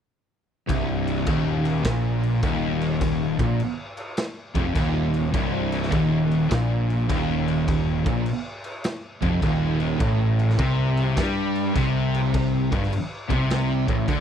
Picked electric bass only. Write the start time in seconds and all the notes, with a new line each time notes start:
0.70 C1
1.27 D#1
1.85 A#1
2.43 D#1
3.39 A#1
4.55 F1
4.75 D#1
5.34 C1
5.92 D#1
6.51 A#1
7.10 D#1
8.06 A#1
9.22 F1
9.42 D#1
10.01 A1
10.58 C2
11.17 G2
11.76 C2
12.72 G1
13.30 C2
13.88 A1
14.09 D2